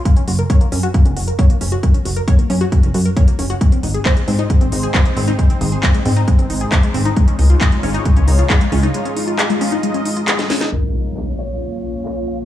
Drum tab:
CC |----------------|----------------|----------------|----------------|
HH |xxoxxxoxxxoxxxox|xxoxxxoxxxoxxxox|xxoxxxoxxxoxxxox|xxoxxxoxxxoxxxox|
CP |----------------|----------------|----x-------x---|----x-------x---|
SD |----------------|----------------|----------------|----------------|
BD |o---o---o---o---|o---o---o---o---|o---o---o---o---|o---o---o---o---|

CC |----------------|----------------|x---------------|
HH |xxoxxxoxxxoxxxox|xxoxxxoxxxoxxxox|----------------|
CP |----x-------x---|----x-------x---|----x-x-----x---|
SD |----------------|-------------ooo|----------------|
BD |o---o---o---o---|----------------|----------------|